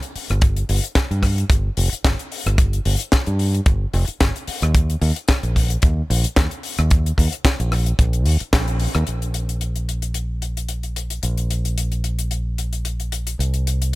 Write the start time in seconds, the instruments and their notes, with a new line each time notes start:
0.03 closed hi-hat
0.15 muted fingered electric bass stroke, open hi-hat
0.30 fingered electric bass G1, cross-stick, closed hi-hat
0.41 kick, closed hi-hat
0.57 closed hi-hat
0.69 fingered electric bass G1, open hi-hat
0.84 closed hi-hat
0.95 kick, snare, closed hi-hat
1.11 fingered electric bass G2, closed hi-hat
1.23 kick, cross-stick, open hi-hat
1.38 closed hi-hat
1.50 fingered electric bass G1, kick, closed hi-hat
1.77 fingered electric bass F1, open hi-hat
1.92 muted fingered electric bass stroke, closed hi-hat
2.05 fingered electric bass G1, kick, snare, closed hi-hat
2.19 closed hi-hat
2.32 open hi-hat
2.46 fingered electric bass G1, cross-stick, closed hi-hat
2.58 kick, closed hi-hat
2.73 closed hi-hat
2.85 fingered electric bass G1, open hi-hat
3.00 closed hi-hat
3.12 kick, snare, closed hi-hat
3.26 fingered electric bass G2, closed hi-hat
3.39 open hi-hat
3.54 closed hi-hat
3.66 fingered electric bass G1, kick, closed hi-hat
3.94 fingered electric bass F1, open hi-hat
4.08 muted fingered electric bass stroke, closed hi-hat
4.20 fingered electric bass G1, kick, snare, closed hi-hat
4.36 closed hi-hat
4.47 muted fingered electric bass stroke, open hi-hat
4.62 fingered electric bass D#2, cross-stick, closed hi-hat
4.75 kick, closed hi-hat
4.90 closed hi-hat
5.01 fingered electric bass D#2, open hi-hat
5.16 closed hi-hat
5.28 kick, snare, closed hi-hat
5.43 fingered electric bass A#1, closed hi-hat
5.56 kick, open hi-hat
5.70 closed hi-hat
5.82 fingered electric bass D#2, kick, closed hi-hat
6.10 fingered electric bass A#1, open hi-hat
6.24 muted fingered electric bass stroke, closed hi-hat
6.36 fingered electric bass D#2, kick, snare, closed hi-hat
6.51 closed hi-hat
6.63 open hi-hat
6.78 fingered electric bass D#2, cross-stick, closed hi-hat
6.90 kick, closed hi-hat
7.06 closed hi-hat
7.18 fingered electric bass D#2, kick, open hi-hat
7.33 closed hi-hat
7.45 kick, snare, closed hi-hat
7.60 fingered electric bass A#1, closed hi-hat
7.72 cross-stick, open hi-hat
7.86 closed hi-hat
7.99 fingered electric bass A#1, kick, closed hi-hat
8.13 closed hi-hat
8.26 fingered electric bass D#2, open hi-hat
8.40 muted fingered electric bass stroke, closed hi-hat
8.53 fingered electric bass A#1, kick, snare, closed hi-hat
8.68 closed hi-hat
8.80 open hi-hat
8.95 fingered electric bass D#2, cross-stick, closed hi-hat
9.07 fingered electric bass A#1, closed hi-hat
9.22 closed hi-hat
9.34 closed hi-hat
9.49 closed hi-hat
9.61 closed hi-hat
9.76 closed hi-hat
9.89 closed hi-hat
10.02 closed hi-hat
10.14 closed hi-hat
10.42 closed hi-hat
10.57 closed hi-hat
10.69 closed hi-hat
10.83 closed hi-hat
10.96 closed hi-hat
11.10 closed hi-hat
11.23 fingered electric bass A#1, closed hi-hat
11.37 closed hi-hat
11.51 closed hi-hat
11.65 closed hi-hat
11.78 closed hi-hat
11.92 closed hi-hat
12.04 closed hi-hat
12.19 closed hi-hat
12.31 closed hi-hat
12.58 closed hi-hat
12.73 closed hi-hat
12.85 closed hi-hat
13.00 closed hi-hat
13.12 closed hi-hat
13.27 closed hi-hat
13.39 fingered electric bass C2, closed hi-hat
13.54 closed hi-hat
13.67 closed hi-hat
13.82 closed hi-hat